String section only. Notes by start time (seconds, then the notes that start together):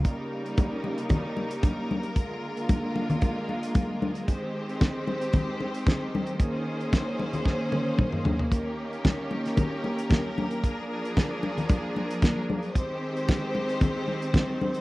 0.05 C#3 G3 A#3 D#4 A#4
2.17 D3 G#3 A#3 F4
4.28 D#3 C4 G4 C5
6.40 A#3 C#4 G#4 C5
8.50 D#3 C#4 G4 A#4
10.62 F3 D4 G#4
12.75 D#3 G#3 C4 G4 C5